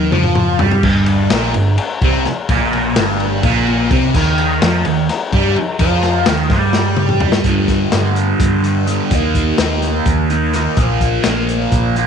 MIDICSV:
0, 0, Header, 1, 6, 480
1, 0, Start_track
1, 0, Key_signature, -2, "minor"
1, 0, Tempo, 473560
1, 848, Time_signature, 7, 3, 24, 8
1, 12233, End_track
2, 0, Start_track
2, 0, Title_t, "Distorted electric guitar"
2, 0, Program_c, 0, 30
2, 0, Note_on_c, 0, 51, 102
2, 118, Note_off_c, 0, 51, 0
2, 130, Note_on_c, 0, 53, 96
2, 602, Note_off_c, 0, 53, 0
2, 617, Note_on_c, 0, 55, 106
2, 846, Note_off_c, 0, 55, 0
2, 854, Note_on_c, 0, 43, 113
2, 1323, Note_on_c, 0, 46, 103
2, 1324, Note_off_c, 0, 43, 0
2, 1559, Note_off_c, 0, 46, 0
2, 1570, Note_on_c, 0, 43, 75
2, 1761, Note_off_c, 0, 43, 0
2, 2065, Note_on_c, 0, 48, 102
2, 2289, Note_off_c, 0, 48, 0
2, 2539, Note_on_c, 0, 46, 112
2, 3006, Note_off_c, 0, 46, 0
2, 3011, Note_on_c, 0, 43, 93
2, 3481, Note_off_c, 0, 43, 0
2, 3494, Note_on_c, 0, 46, 103
2, 3962, Note_off_c, 0, 46, 0
2, 3972, Note_on_c, 0, 48, 114
2, 4201, Note_off_c, 0, 48, 0
2, 4215, Note_on_c, 0, 51, 123
2, 4681, Note_off_c, 0, 51, 0
2, 4702, Note_on_c, 0, 53, 107
2, 4925, Note_off_c, 0, 53, 0
2, 4937, Note_on_c, 0, 51, 78
2, 5121, Note_off_c, 0, 51, 0
2, 5412, Note_on_c, 0, 55, 107
2, 5639, Note_off_c, 0, 55, 0
2, 5879, Note_on_c, 0, 53, 124
2, 6351, Note_off_c, 0, 53, 0
2, 6368, Note_on_c, 0, 51, 103
2, 6595, Note_off_c, 0, 51, 0
2, 6610, Note_on_c, 0, 55, 109
2, 7554, Note_on_c, 0, 43, 90
2, 7556, Note_off_c, 0, 55, 0
2, 7571, Note_on_c, 0, 50, 88
2, 7574, Note_on_c, 0, 55, 108
2, 8025, Note_off_c, 0, 43, 0
2, 8037, Note_off_c, 0, 50, 0
2, 8037, Note_on_c, 0, 43, 81
2, 8049, Note_on_c, 0, 50, 88
2, 8055, Note_off_c, 0, 55, 0
2, 8059, Note_on_c, 0, 55, 85
2, 8751, Note_off_c, 0, 55, 0
2, 8763, Note_on_c, 0, 55, 63
2, 8770, Note_off_c, 0, 50, 0
2, 8782, Note_on_c, 0, 50, 59
2, 8985, Note_off_c, 0, 43, 0
2, 8996, Note_off_c, 0, 50, 0
2, 8997, Note_on_c, 0, 43, 76
2, 9008, Note_on_c, 0, 50, 74
2, 9011, Note_off_c, 0, 55, 0
2, 9023, Note_on_c, 0, 55, 75
2, 9225, Note_off_c, 0, 43, 0
2, 9230, Note_off_c, 0, 50, 0
2, 9238, Note_off_c, 0, 55, 0
2, 9254, Note_on_c, 0, 51, 93
2, 9265, Note_on_c, 0, 58, 102
2, 9268, Note_on_c, 0, 63, 108
2, 9702, Note_off_c, 0, 51, 0
2, 9714, Note_on_c, 0, 51, 83
2, 9720, Note_off_c, 0, 63, 0
2, 9724, Note_off_c, 0, 58, 0
2, 9728, Note_on_c, 0, 58, 86
2, 9732, Note_on_c, 0, 63, 93
2, 10432, Note_off_c, 0, 63, 0
2, 10444, Note_on_c, 0, 63, 69
2, 10454, Note_off_c, 0, 58, 0
2, 10466, Note_on_c, 0, 58, 59
2, 10672, Note_off_c, 0, 51, 0
2, 10682, Note_off_c, 0, 58, 0
2, 10684, Note_on_c, 0, 51, 74
2, 10693, Note_off_c, 0, 63, 0
2, 10695, Note_on_c, 0, 58, 81
2, 10705, Note_on_c, 0, 63, 85
2, 10911, Note_off_c, 0, 51, 0
2, 10917, Note_off_c, 0, 58, 0
2, 10922, Note_off_c, 0, 63, 0
2, 10928, Note_on_c, 0, 46, 100
2, 10935, Note_on_c, 0, 53, 108
2, 10947, Note_on_c, 0, 58, 107
2, 11391, Note_off_c, 0, 46, 0
2, 11403, Note_on_c, 0, 46, 89
2, 11404, Note_off_c, 0, 53, 0
2, 11416, Note_on_c, 0, 53, 80
2, 11417, Note_off_c, 0, 58, 0
2, 11429, Note_on_c, 0, 58, 93
2, 12120, Note_off_c, 0, 58, 0
2, 12132, Note_on_c, 0, 58, 71
2, 12138, Note_off_c, 0, 53, 0
2, 12150, Note_on_c, 0, 53, 54
2, 12233, Note_off_c, 0, 46, 0
2, 12233, Note_off_c, 0, 53, 0
2, 12233, Note_off_c, 0, 58, 0
2, 12233, End_track
3, 0, Start_track
3, 0, Title_t, "Picked electric bass"
3, 0, Program_c, 1, 34
3, 132, Note_on_c, 1, 41, 106
3, 577, Note_off_c, 1, 41, 0
3, 623, Note_on_c, 1, 43, 89
3, 837, Note_off_c, 1, 43, 0
3, 843, Note_on_c, 1, 31, 101
3, 1292, Note_off_c, 1, 31, 0
3, 1336, Note_on_c, 1, 34, 97
3, 1556, Note_off_c, 1, 34, 0
3, 1577, Note_on_c, 1, 31, 77
3, 1796, Note_off_c, 1, 31, 0
3, 2046, Note_on_c, 1, 36, 102
3, 2270, Note_off_c, 1, 36, 0
3, 2527, Note_on_c, 1, 34, 102
3, 2973, Note_off_c, 1, 34, 0
3, 3015, Note_on_c, 1, 31, 97
3, 3457, Note_off_c, 1, 31, 0
3, 3484, Note_on_c, 1, 34, 111
3, 3931, Note_off_c, 1, 34, 0
3, 3961, Note_on_c, 1, 36, 99
3, 4185, Note_off_c, 1, 36, 0
3, 4204, Note_on_c, 1, 39, 103
3, 4649, Note_off_c, 1, 39, 0
3, 4691, Note_on_c, 1, 41, 102
3, 4910, Note_off_c, 1, 41, 0
3, 4928, Note_on_c, 1, 39, 84
3, 5148, Note_off_c, 1, 39, 0
3, 5396, Note_on_c, 1, 43, 110
3, 5621, Note_off_c, 1, 43, 0
3, 5869, Note_on_c, 1, 41, 113
3, 6319, Note_off_c, 1, 41, 0
3, 6353, Note_on_c, 1, 39, 97
3, 6579, Note_off_c, 1, 39, 0
3, 6584, Note_on_c, 1, 43, 98
3, 7510, Note_off_c, 1, 43, 0
3, 7543, Note_on_c, 1, 43, 92
3, 7948, Note_off_c, 1, 43, 0
3, 8038, Note_on_c, 1, 43, 98
3, 8437, Note_off_c, 1, 43, 0
3, 8514, Note_on_c, 1, 43, 94
3, 9116, Note_off_c, 1, 43, 0
3, 9233, Note_on_c, 1, 39, 96
3, 9636, Note_off_c, 1, 39, 0
3, 9720, Note_on_c, 1, 39, 98
3, 10121, Note_off_c, 1, 39, 0
3, 10200, Note_on_c, 1, 39, 97
3, 10802, Note_off_c, 1, 39, 0
3, 10919, Note_on_c, 1, 34, 100
3, 11322, Note_off_c, 1, 34, 0
3, 11407, Note_on_c, 1, 34, 95
3, 11808, Note_off_c, 1, 34, 0
3, 11881, Note_on_c, 1, 34, 97
3, 12233, Note_off_c, 1, 34, 0
3, 12233, End_track
4, 0, Start_track
4, 0, Title_t, "Muted distorted electric guitar strokes"
4, 2295, Note_on_c, 9, 29, 64
4, 2396, Note_off_c, 9, 29, 0
4, 5657, Note_on_c, 9, 29, 65
4, 5758, Note_off_c, 9, 29, 0
4, 12233, End_track
5, 0, Start_track
5, 0, Title_t, "Muted picked electric bass strokes"
5, 2297, Note_on_c, 9, 29, 39
5, 2398, Note_off_c, 9, 29, 0
5, 5641, Note_on_c, 9, 29, 40
5, 5743, Note_off_c, 9, 29, 0
5, 12233, End_track
6, 0, Start_track
6, 0, Title_t, "Drums"
6, 124, Note_on_c, 9, 47, 95
6, 225, Note_off_c, 9, 47, 0
6, 239, Note_on_c, 9, 45, 78
6, 340, Note_off_c, 9, 45, 0
6, 359, Note_on_c, 9, 45, 88
6, 460, Note_off_c, 9, 45, 0
6, 600, Note_on_c, 9, 43, 107
6, 701, Note_off_c, 9, 43, 0
6, 725, Note_on_c, 9, 43, 89
6, 826, Note_off_c, 9, 43, 0
6, 842, Note_on_c, 9, 49, 105
6, 844, Note_on_c, 9, 36, 106
6, 943, Note_off_c, 9, 49, 0
6, 946, Note_off_c, 9, 36, 0
6, 1076, Note_on_c, 9, 51, 80
6, 1178, Note_off_c, 9, 51, 0
6, 1320, Note_on_c, 9, 51, 111
6, 1321, Note_on_c, 9, 38, 119
6, 1422, Note_off_c, 9, 51, 0
6, 1423, Note_off_c, 9, 38, 0
6, 1562, Note_on_c, 9, 51, 75
6, 1664, Note_off_c, 9, 51, 0
6, 1801, Note_on_c, 9, 51, 113
6, 1903, Note_off_c, 9, 51, 0
6, 2044, Note_on_c, 9, 36, 105
6, 2044, Note_on_c, 9, 51, 76
6, 2145, Note_off_c, 9, 36, 0
6, 2146, Note_off_c, 9, 51, 0
6, 2284, Note_on_c, 9, 51, 81
6, 2285, Note_on_c, 9, 38, 35
6, 2385, Note_off_c, 9, 51, 0
6, 2386, Note_off_c, 9, 38, 0
6, 2521, Note_on_c, 9, 51, 99
6, 2524, Note_on_c, 9, 36, 109
6, 2623, Note_off_c, 9, 51, 0
6, 2625, Note_off_c, 9, 36, 0
6, 2766, Note_on_c, 9, 51, 73
6, 2867, Note_off_c, 9, 51, 0
6, 3001, Note_on_c, 9, 51, 101
6, 3002, Note_on_c, 9, 38, 115
6, 3103, Note_off_c, 9, 51, 0
6, 3104, Note_off_c, 9, 38, 0
6, 3243, Note_on_c, 9, 51, 77
6, 3344, Note_off_c, 9, 51, 0
6, 3478, Note_on_c, 9, 51, 103
6, 3481, Note_on_c, 9, 36, 117
6, 3579, Note_off_c, 9, 51, 0
6, 3582, Note_off_c, 9, 36, 0
6, 3717, Note_on_c, 9, 51, 69
6, 3819, Note_off_c, 9, 51, 0
6, 3962, Note_on_c, 9, 36, 116
6, 3963, Note_on_c, 9, 51, 77
6, 4063, Note_off_c, 9, 36, 0
6, 4065, Note_off_c, 9, 51, 0
6, 4200, Note_on_c, 9, 36, 101
6, 4201, Note_on_c, 9, 57, 109
6, 4302, Note_off_c, 9, 36, 0
6, 4302, Note_off_c, 9, 57, 0
6, 4439, Note_on_c, 9, 51, 78
6, 4540, Note_off_c, 9, 51, 0
6, 4682, Note_on_c, 9, 51, 116
6, 4683, Note_on_c, 9, 38, 112
6, 4783, Note_off_c, 9, 51, 0
6, 4784, Note_off_c, 9, 38, 0
6, 4914, Note_on_c, 9, 51, 79
6, 5015, Note_off_c, 9, 51, 0
6, 5161, Note_on_c, 9, 51, 119
6, 5162, Note_on_c, 9, 38, 38
6, 5263, Note_off_c, 9, 51, 0
6, 5264, Note_off_c, 9, 38, 0
6, 5398, Note_on_c, 9, 36, 108
6, 5401, Note_on_c, 9, 51, 81
6, 5499, Note_off_c, 9, 36, 0
6, 5502, Note_off_c, 9, 51, 0
6, 5636, Note_on_c, 9, 51, 81
6, 5737, Note_off_c, 9, 51, 0
6, 5870, Note_on_c, 9, 51, 102
6, 5873, Note_on_c, 9, 36, 101
6, 5971, Note_off_c, 9, 51, 0
6, 5975, Note_off_c, 9, 36, 0
6, 6107, Note_on_c, 9, 51, 86
6, 6108, Note_on_c, 9, 38, 39
6, 6208, Note_off_c, 9, 51, 0
6, 6209, Note_off_c, 9, 38, 0
6, 6344, Note_on_c, 9, 51, 104
6, 6345, Note_on_c, 9, 38, 118
6, 6446, Note_off_c, 9, 51, 0
6, 6447, Note_off_c, 9, 38, 0
6, 6585, Note_on_c, 9, 51, 78
6, 6586, Note_on_c, 9, 38, 37
6, 6587, Note_on_c, 9, 36, 107
6, 6686, Note_off_c, 9, 51, 0
6, 6687, Note_off_c, 9, 38, 0
6, 6688, Note_off_c, 9, 36, 0
6, 6822, Note_on_c, 9, 38, 73
6, 6924, Note_off_c, 9, 38, 0
6, 7060, Note_on_c, 9, 47, 83
6, 7161, Note_off_c, 9, 47, 0
6, 7184, Note_on_c, 9, 45, 85
6, 7286, Note_off_c, 9, 45, 0
6, 7303, Note_on_c, 9, 43, 103
6, 7404, Note_off_c, 9, 43, 0
6, 7420, Note_on_c, 9, 38, 100
6, 7521, Note_off_c, 9, 38, 0
6, 7541, Note_on_c, 9, 42, 90
6, 7545, Note_on_c, 9, 36, 94
6, 7642, Note_off_c, 9, 42, 0
6, 7647, Note_off_c, 9, 36, 0
6, 7785, Note_on_c, 9, 42, 65
6, 7786, Note_on_c, 9, 36, 76
6, 7786, Note_on_c, 9, 38, 34
6, 7886, Note_off_c, 9, 42, 0
6, 7887, Note_off_c, 9, 38, 0
6, 7888, Note_off_c, 9, 36, 0
6, 8026, Note_on_c, 9, 42, 89
6, 8028, Note_on_c, 9, 38, 104
6, 8128, Note_off_c, 9, 42, 0
6, 8129, Note_off_c, 9, 38, 0
6, 8271, Note_on_c, 9, 42, 66
6, 8372, Note_off_c, 9, 42, 0
6, 8511, Note_on_c, 9, 36, 113
6, 8514, Note_on_c, 9, 42, 103
6, 8613, Note_off_c, 9, 36, 0
6, 8615, Note_off_c, 9, 42, 0
6, 8755, Note_on_c, 9, 42, 65
6, 8856, Note_off_c, 9, 42, 0
6, 8994, Note_on_c, 9, 42, 69
6, 9095, Note_off_c, 9, 42, 0
6, 9231, Note_on_c, 9, 42, 93
6, 9235, Note_on_c, 9, 36, 107
6, 9333, Note_off_c, 9, 42, 0
6, 9336, Note_off_c, 9, 36, 0
6, 9476, Note_on_c, 9, 36, 69
6, 9476, Note_on_c, 9, 42, 68
6, 9577, Note_off_c, 9, 36, 0
6, 9577, Note_off_c, 9, 42, 0
6, 9712, Note_on_c, 9, 42, 100
6, 9713, Note_on_c, 9, 38, 103
6, 9813, Note_off_c, 9, 42, 0
6, 9814, Note_off_c, 9, 38, 0
6, 9956, Note_on_c, 9, 42, 68
6, 9957, Note_on_c, 9, 38, 35
6, 10057, Note_off_c, 9, 42, 0
6, 10058, Note_off_c, 9, 38, 0
6, 10193, Note_on_c, 9, 42, 96
6, 10197, Note_on_c, 9, 36, 108
6, 10294, Note_off_c, 9, 42, 0
6, 10298, Note_off_c, 9, 36, 0
6, 10438, Note_on_c, 9, 42, 59
6, 10539, Note_off_c, 9, 42, 0
6, 10677, Note_on_c, 9, 42, 62
6, 10678, Note_on_c, 9, 38, 32
6, 10778, Note_off_c, 9, 42, 0
6, 10779, Note_off_c, 9, 38, 0
6, 10913, Note_on_c, 9, 42, 87
6, 10918, Note_on_c, 9, 36, 110
6, 11014, Note_off_c, 9, 42, 0
6, 11020, Note_off_c, 9, 36, 0
6, 11158, Note_on_c, 9, 36, 75
6, 11159, Note_on_c, 9, 42, 61
6, 11260, Note_off_c, 9, 36, 0
6, 11261, Note_off_c, 9, 42, 0
6, 11389, Note_on_c, 9, 42, 87
6, 11390, Note_on_c, 9, 38, 114
6, 11491, Note_off_c, 9, 42, 0
6, 11492, Note_off_c, 9, 38, 0
6, 11643, Note_on_c, 9, 42, 67
6, 11744, Note_off_c, 9, 42, 0
6, 11877, Note_on_c, 9, 42, 85
6, 11880, Note_on_c, 9, 36, 108
6, 11978, Note_off_c, 9, 42, 0
6, 11982, Note_off_c, 9, 36, 0
6, 12124, Note_on_c, 9, 42, 59
6, 12225, Note_off_c, 9, 42, 0
6, 12233, End_track
0, 0, End_of_file